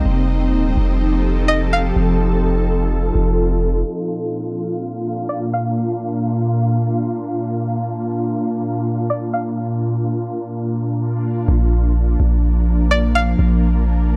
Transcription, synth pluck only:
1.48 1.71 D#5 medium
1.73 1.95 F5 medium
5.29 5.52 D5 medium
5.53 5.76 F5 medium
9.10 9.33 D5 medium
9.33 9.56 F5 medium
12.91 13.14 D5 medium
13.15 13.38 F5 medium

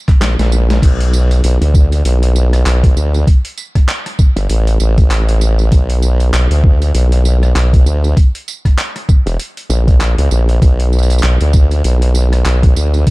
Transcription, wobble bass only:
0.21 0.36 A#1 loud
0.39 0.80 A#1 loud
0.82 1.42 B1 loud
1.44 1.59 B1 medium
1.61 2.03 D2 loud
2.05 2.64 B1 medium
2.66 2.94 B1 loud
2.96 3.25 D2 loud
4.36 4.47 G1 loud
4.49 4.78 A1 loud
4.80 5.70 A1 loud
5.72 6.31 B1 loud
6.33 6.48 B1 loud
6.51 6.92 D2 loud
6.94 7.54 B1 loud
7.55 7.84 B1 loud
7.86 8.15 D2 loud
9.26 9.37 E1 loud
9.70 10.15 A#1 loud
10.18 10.29 C#2 loud
10.31 10.60 A#1 loud
10.62 11.21 B1 loud
11.23 11.38 B1 loud
11.41 11.82 D2 loud
11.84 12.44 B1 loud
12.45 12.74 B1 loud
12.76 13.05 D2 loud

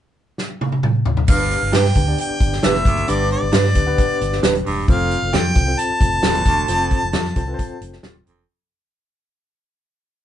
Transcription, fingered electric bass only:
1.28 1.54 G1 medium
1.62 1.71 G1 medium
1.74 1.91 G2 loud
1.96 2.13 D2 medium
2.30 muted fingered electric bass stroke soft
2.41 2.58 G1 medium
2.64 2.81 F1 medium
2.85 3.03 F#1 medium
3.09 3.34 G1 medium
3.42 3.51 G1 medium
3.53 3.76 G2 loud
3.76 3.93 D2 medium
4.10 muted fingered electric bass stroke soft
4.21 4.38 G1 medium
4.43 4.60 D#1 loud
4.66 4.83 E1 medium
4.88 5.14 F1 loud
5.22 5.35 F1 medium
5.34 5.51 F2 medium
5.56 5.73 C2 medium
5.90 muted fingered electric bass stroke soft
6.01 6.18 F1 medium
6.23 6.40 D#1 medium
6.46 6.63 E1 medium
6.68 6.94 F1 medium
7.03 7.15 F1 medium
7.13 7.31 F2 loud
7.36 7.53 C2 medium
7.69 muted fingered electric bass stroke soft
7.81 7.98 F1 medium
8.03 8.21 D#1 medium
8.27 8.44 E1 medium

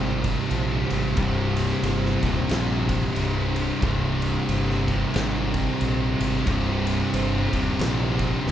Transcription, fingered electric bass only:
0.00 0.39 G#1 loud
0.51 0.83 A#1 loud
0.91 1.12 G#1 medium
1.17 1.71 C1 medium
1.83 2.15 G1 loud
2.23 2.45 D#1 medium
2.50 3.04 A#1 loud
3.16 3.70 C1 loud
3.82 4.36 C1 loud
4.48 5.02 G1 medium
5.15 5.69 G#1 loud
5.81 6.13 A#1 loud
6.20 6.42 G#1 loud
6.47 7.01 C1 medium
7.14 7.46 G1 loud
7.53 7.75 D#1 medium
7.79 8.33 A#1 loud
8.46 8.52 C1 loud

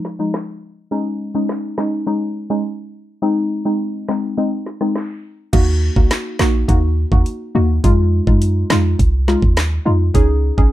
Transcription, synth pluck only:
0.19 0.32 F3 medium
0.19 0.32 G#3 medium
0.19 0.32 D#4 medium
0.91 1.31 G#3 medium
0.91 1.31 C#4 medium
0.91 1.31 D#4 loud
1.34 1.74 G#3 medium
1.34 1.75 C#4 medium
1.34 1.75 D#4 medium
1.78 2.04 G#3 medium
1.78 2.05 C#4 medium
1.78 2.05 D#4 medium
2.07 2.47 G#3 medium
2.07 2.47 C#4 medium
2.07 2.47 D#4 loud
2.50 2.63 G#3 medium
2.50 2.63 C#4 medium
2.50 2.63 D#4 medium
3.22 3.62 G#3 medium
3.22 3.62 C4 medium
3.22 3.62 D#4 loud
3.65 4.05 G#3 medium
3.65 4.05 C4 medium
3.65 4.06 D#4 medium
4.09 4.35 G#3 medium
4.09 4.35 C4 medium
4.09 4.36 D#4 medium
4.37 4.50 G#3 medium
4.37 4.50 C4 medium
4.37 4.51 D#4 loud
4.81 4.94 G#3 medium
4.81 4.94 C4 medium
4.81 4.94 D#4 medium
5.53 5.93 A#3 loud
5.53 5.93 D#4 medium
5.53 5.93 F#4 loud
5.96 6.36 A#3 medium
5.96 6.36 D#4 medium
5.96 6.36 F#4 medium
6.39 6.66 A#3 medium
6.39 6.66 D#4 medium
6.39 6.66 F#4 medium
6.68 6.81 A#3 loud
6.68 6.81 D#4 medium
6.68 6.81 F#4 loud
7.12 7.24 A#3 medium
7.12 7.25 D#4 medium
7.12 7.25 F#4 medium
7.55 7.68 A#3 medium
7.55 7.68 D#4 medium
7.55 7.68 F#4 medium
7.84 8.24 G#3 loud
7.84 8.24 D#4 medium
7.84 8.24 F4 loud
8.27 8.67 G#3 medium
8.27 8.67 D#4 medium
8.27 8.67 F4 medium
8.70 8.97 G#3 medium
8.70 8.97 D#4 medium
8.70 8.97 F4 medium
9.28 9.41 G#3 medium
9.28 9.41 D#4 medium
9.28 9.41 F4 medium
9.85 9.98 G#3 medium
9.85 9.99 D#4 medium
9.85 9.99 F4 medium
10.14 10.54 C#4 loud
10.14 10.54 D#4 medium
10.14 10.55 G#4 loud
10.58 10.72 C#4 medium
10.58 10.72 D#4 medium
10.58 10.72 G#4 medium

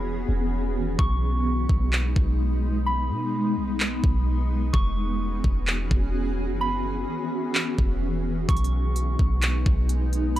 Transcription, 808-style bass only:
0.00 0.25 E1 loud
0.29 0.96 E1 loud
0.99 1.66 B1 loud
1.69 2.14 B1 medium
2.16 3.11 B1 loud
3.10 3.58 B2 loud
3.57 4.01 B1 medium
4.04 4.71 B1 loud
4.74 5.41 E1 loud
5.44 5.89 E1 loud
5.91 6.51 E1 loud
6.49 7.05 F#1 loud
7.78 8.46 E1 loud
8.49 9.16 B1 loud
9.19 9.64 B1 loud
9.66 10.40 B1 loud

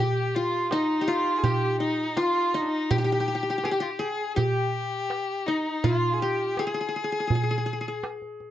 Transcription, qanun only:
0.00 1.01 G4 medium
0.36 1.07 F4 medium
0.72 1.80 D#4 medium
1.01 1.43 G4 medium
1.08 2.17 F4 medium
1.44 2.69 G4 medium
1.80 2.54 D#4 medium
2.17 3.51 F4 medium
2.54 3.98 D#4 medium
2.91 2.98 G4 medium
2.98 3.04 G4 medium
3.04 3.12 G4 medium
3.12 3.20 G4 medium
3.20 3.27 G4 medium
3.28 3.34 G4 soft
3.35 3.42 G4 medium
3.43 3.50 G4 soft
3.50 3.58 G4 medium
3.58 3.65 G4 soft
3.65 3.71 G4 medium
3.71 3.80 G4 medium
3.80 4.05 G4 medium
3.99 4.42 G#4 medium
4.36 5.62 G4 medium
5.48 6.92 D#4 medium
5.84 7.18 F4 medium
6.22 6.65 G4 medium
6.59 6.66 G#4 medium
6.67 6.74 G#4 medium
6.74 6.80 G#4 medium
6.81 6.88 G#4 soft
6.89 6.96 G#4 soft
6.96 7.04 G#4 soft
7.04 7.12 G#4 soft
7.12 7.20 G#4 soft
7.20 7.27 G#4 soft
7.27 7.35 G#4 soft
7.35 7.43 G#4 medium
7.43 7.50 G#4 soft
7.51 7.57 G#4 medium
7.58 7.65 G#4 soft
7.66 7.72 G#4 soft
7.73 7.80 G#4 soft
7.81 7.88 G#4 soft
7.88 8.51 G#4 soft

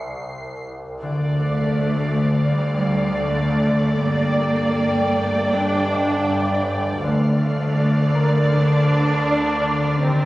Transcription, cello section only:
1.40 2.49 A3 soft
2.53 3.28 G3 soft
3.28 4.03 A3 soft
4.03 5.50 A#3 soft
5.53 6.66 D4 soft
7.03 8.49 A3 medium
8.54 10.03 D4 medium
10.03 10.25 C4 medium

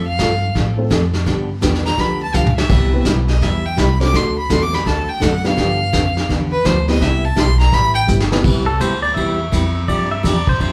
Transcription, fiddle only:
0.07 0.52 F5 medium
1.86 2.02 A#5 loud
2.00 2.22 B5 loud
2.23 2.37 A5 loud
2.36 2.56 F5 medium
2.57 3.02 E5 medium
3.29 3.45 D#5 medium
3.44 3.68 E5 medium
3.66 3.81 G5 loud
3.80 4.01 B5 medium
4.02 4.18 D6 loud
4.16 4.38 C6 medium
4.39 4.54 B5 loud
4.53 4.64 C6 loud
4.63 4.76 D6 loud
4.74 4.88 B5 loud
4.87 5.11 A5 medium
5.09 5.24 G5 loud
5.23 5.47 F#5 medium
5.46 6.30 F5 loud
6.52 6.68 B4 loud
6.66 6.89 C5 medium
6.90 7.04 D#5 loud
7.03 7.27 E5 medium
7.25 7.41 A5 loud
7.40 7.59 C6 loud
7.60 7.75 A#5 loud
7.74 7.94 B5 loud
7.95 8.03 G5 loud

